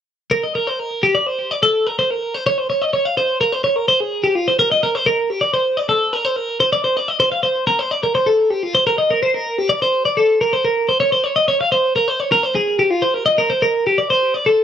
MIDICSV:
0, 0, Header, 1, 2, 480
1, 0, Start_track
1, 0, Tempo, 475436
1, 316, Time_signature, 9, 3, 24, 8
1, 14779, End_track
2, 0, Start_track
2, 0, Title_t, "Clean electric guitar"
2, 0, Program_c, 0, 27
2, 315, Note_on_c, 0, 70, 80
2, 435, Note_off_c, 0, 70, 0
2, 439, Note_on_c, 0, 75, 64
2, 554, Note_off_c, 0, 75, 0
2, 558, Note_on_c, 0, 70, 66
2, 679, Note_off_c, 0, 70, 0
2, 679, Note_on_c, 0, 72, 58
2, 803, Note_off_c, 0, 72, 0
2, 803, Note_on_c, 0, 70, 69
2, 1038, Note_off_c, 0, 70, 0
2, 1041, Note_on_c, 0, 67, 61
2, 1157, Note_off_c, 0, 67, 0
2, 1158, Note_on_c, 0, 74, 63
2, 1278, Note_off_c, 0, 74, 0
2, 1278, Note_on_c, 0, 72, 69
2, 1526, Note_off_c, 0, 72, 0
2, 1526, Note_on_c, 0, 74, 68
2, 1639, Note_off_c, 0, 74, 0
2, 1643, Note_on_c, 0, 69, 68
2, 1884, Note_off_c, 0, 69, 0
2, 1884, Note_on_c, 0, 70, 61
2, 1998, Note_off_c, 0, 70, 0
2, 2007, Note_on_c, 0, 72, 67
2, 2127, Note_off_c, 0, 72, 0
2, 2127, Note_on_c, 0, 70, 60
2, 2367, Note_off_c, 0, 70, 0
2, 2367, Note_on_c, 0, 72, 58
2, 2479, Note_off_c, 0, 72, 0
2, 2489, Note_on_c, 0, 73, 86
2, 2604, Note_off_c, 0, 73, 0
2, 2604, Note_on_c, 0, 72, 64
2, 2717, Note_off_c, 0, 72, 0
2, 2722, Note_on_c, 0, 73, 67
2, 2843, Note_off_c, 0, 73, 0
2, 2843, Note_on_c, 0, 75, 59
2, 2956, Note_off_c, 0, 75, 0
2, 2962, Note_on_c, 0, 73, 69
2, 3083, Note_off_c, 0, 73, 0
2, 3083, Note_on_c, 0, 77, 65
2, 3196, Note_off_c, 0, 77, 0
2, 3204, Note_on_c, 0, 72, 66
2, 3436, Note_off_c, 0, 72, 0
2, 3440, Note_on_c, 0, 70, 71
2, 3558, Note_off_c, 0, 70, 0
2, 3558, Note_on_c, 0, 72, 64
2, 3671, Note_off_c, 0, 72, 0
2, 3675, Note_on_c, 0, 73, 68
2, 3796, Note_off_c, 0, 73, 0
2, 3796, Note_on_c, 0, 70, 68
2, 3912, Note_off_c, 0, 70, 0
2, 3920, Note_on_c, 0, 72, 72
2, 4043, Note_off_c, 0, 72, 0
2, 4043, Note_on_c, 0, 68, 60
2, 4275, Note_off_c, 0, 68, 0
2, 4276, Note_on_c, 0, 67, 63
2, 4395, Note_off_c, 0, 67, 0
2, 4395, Note_on_c, 0, 65, 71
2, 4511, Note_off_c, 0, 65, 0
2, 4520, Note_on_c, 0, 72, 59
2, 4631, Note_off_c, 0, 72, 0
2, 4635, Note_on_c, 0, 70, 84
2, 4751, Note_off_c, 0, 70, 0
2, 4760, Note_on_c, 0, 75, 62
2, 4874, Note_off_c, 0, 75, 0
2, 4878, Note_on_c, 0, 70, 76
2, 4998, Note_off_c, 0, 70, 0
2, 4998, Note_on_c, 0, 72, 61
2, 5112, Note_off_c, 0, 72, 0
2, 5112, Note_on_c, 0, 70, 71
2, 5353, Note_off_c, 0, 70, 0
2, 5353, Note_on_c, 0, 67, 65
2, 5464, Note_on_c, 0, 74, 62
2, 5470, Note_off_c, 0, 67, 0
2, 5585, Note_off_c, 0, 74, 0
2, 5589, Note_on_c, 0, 72, 71
2, 5827, Note_off_c, 0, 72, 0
2, 5827, Note_on_c, 0, 74, 67
2, 5942, Note_off_c, 0, 74, 0
2, 5946, Note_on_c, 0, 69, 67
2, 6189, Note_off_c, 0, 69, 0
2, 6189, Note_on_c, 0, 70, 63
2, 6308, Note_off_c, 0, 70, 0
2, 6308, Note_on_c, 0, 72, 66
2, 6424, Note_off_c, 0, 72, 0
2, 6424, Note_on_c, 0, 70, 60
2, 6662, Note_off_c, 0, 70, 0
2, 6666, Note_on_c, 0, 72, 57
2, 6786, Note_off_c, 0, 72, 0
2, 6790, Note_on_c, 0, 74, 78
2, 6903, Note_off_c, 0, 74, 0
2, 6907, Note_on_c, 0, 72, 66
2, 7035, Note_off_c, 0, 72, 0
2, 7035, Note_on_c, 0, 74, 67
2, 7151, Note_off_c, 0, 74, 0
2, 7151, Note_on_c, 0, 75, 58
2, 7264, Note_off_c, 0, 75, 0
2, 7268, Note_on_c, 0, 72, 72
2, 7383, Note_off_c, 0, 72, 0
2, 7387, Note_on_c, 0, 77, 57
2, 7498, Note_off_c, 0, 77, 0
2, 7502, Note_on_c, 0, 72, 63
2, 7740, Note_off_c, 0, 72, 0
2, 7744, Note_on_c, 0, 70, 71
2, 7866, Note_off_c, 0, 70, 0
2, 7866, Note_on_c, 0, 72, 60
2, 7988, Note_off_c, 0, 72, 0
2, 7988, Note_on_c, 0, 74, 65
2, 8107, Note_off_c, 0, 74, 0
2, 8111, Note_on_c, 0, 70, 59
2, 8224, Note_off_c, 0, 70, 0
2, 8228, Note_on_c, 0, 72, 69
2, 8345, Note_on_c, 0, 69, 59
2, 8348, Note_off_c, 0, 72, 0
2, 8587, Note_off_c, 0, 69, 0
2, 8587, Note_on_c, 0, 67, 65
2, 8713, Note_off_c, 0, 67, 0
2, 8713, Note_on_c, 0, 65, 69
2, 8830, Note_off_c, 0, 65, 0
2, 8831, Note_on_c, 0, 72, 59
2, 8949, Note_off_c, 0, 72, 0
2, 8953, Note_on_c, 0, 70, 82
2, 9064, Note_off_c, 0, 70, 0
2, 9068, Note_on_c, 0, 75, 63
2, 9188, Note_off_c, 0, 75, 0
2, 9192, Note_on_c, 0, 70, 67
2, 9310, Note_off_c, 0, 70, 0
2, 9315, Note_on_c, 0, 72, 63
2, 9433, Note_off_c, 0, 72, 0
2, 9433, Note_on_c, 0, 70, 71
2, 9677, Note_off_c, 0, 70, 0
2, 9677, Note_on_c, 0, 67, 66
2, 9787, Note_on_c, 0, 74, 62
2, 9793, Note_off_c, 0, 67, 0
2, 9908, Note_off_c, 0, 74, 0
2, 9916, Note_on_c, 0, 72, 75
2, 10145, Note_off_c, 0, 72, 0
2, 10149, Note_on_c, 0, 74, 70
2, 10268, Note_on_c, 0, 69, 60
2, 10269, Note_off_c, 0, 74, 0
2, 10507, Note_off_c, 0, 69, 0
2, 10511, Note_on_c, 0, 70, 65
2, 10630, Note_off_c, 0, 70, 0
2, 10632, Note_on_c, 0, 72, 66
2, 10749, Note_on_c, 0, 70, 60
2, 10751, Note_off_c, 0, 72, 0
2, 10989, Note_off_c, 0, 70, 0
2, 10991, Note_on_c, 0, 72, 62
2, 11103, Note_off_c, 0, 72, 0
2, 11107, Note_on_c, 0, 73, 81
2, 11226, Note_off_c, 0, 73, 0
2, 11230, Note_on_c, 0, 72, 65
2, 11346, Note_off_c, 0, 72, 0
2, 11346, Note_on_c, 0, 73, 66
2, 11465, Note_off_c, 0, 73, 0
2, 11469, Note_on_c, 0, 75, 59
2, 11587, Note_off_c, 0, 75, 0
2, 11591, Note_on_c, 0, 73, 74
2, 11711, Note_off_c, 0, 73, 0
2, 11718, Note_on_c, 0, 77, 60
2, 11828, Note_off_c, 0, 77, 0
2, 11832, Note_on_c, 0, 72, 64
2, 12069, Note_off_c, 0, 72, 0
2, 12073, Note_on_c, 0, 70, 68
2, 12195, Note_off_c, 0, 70, 0
2, 12195, Note_on_c, 0, 72, 68
2, 12315, Note_off_c, 0, 72, 0
2, 12315, Note_on_c, 0, 73, 67
2, 12433, Note_off_c, 0, 73, 0
2, 12437, Note_on_c, 0, 70, 65
2, 12553, Note_off_c, 0, 70, 0
2, 12553, Note_on_c, 0, 72, 70
2, 12672, Note_off_c, 0, 72, 0
2, 12672, Note_on_c, 0, 68, 65
2, 12910, Note_off_c, 0, 68, 0
2, 12914, Note_on_c, 0, 67, 61
2, 13030, Note_off_c, 0, 67, 0
2, 13030, Note_on_c, 0, 65, 75
2, 13146, Note_on_c, 0, 72, 59
2, 13151, Note_off_c, 0, 65, 0
2, 13268, Note_off_c, 0, 72, 0
2, 13268, Note_on_c, 0, 70, 82
2, 13381, Note_off_c, 0, 70, 0
2, 13385, Note_on_c, 0, 75, 64
2, 13509, Note_off_c, 0, 75, 0
2, 13510, Note_on_c, 0, 70, 73
2, 13628, Note_on_c, 0, 72, 60
2, 13631, Note_off_c, 0, 70, 0
2, 13750, Note_off_c, 0, 72, 0
2, 13754, Note_on_c, 0, 70, 69
2, 13993, Note_off_c, 0, 70, 0
2, 14000, Note_on_c, 0, 67, 64
2, 14116, Note_on_c, 0, 74, 62
2, 14117, Note_off_c, 0, 67, 0
2, 14233, Note_off_c, 0, 74, 0
2, 14237, Note_on_c, 0, 72, 76
2, 14480, Note_off_c, 0, 72, 0
2, 14480, Note_on_c, 0, 74, 70
2, 14597, Note_off_c, 0, 74, 0
2, 14602, Note_on_c, 0, 69, 64
2, 14779, Note_off_c, 0, 69, 0
2, 14779, End_track
0, 0, End_of_file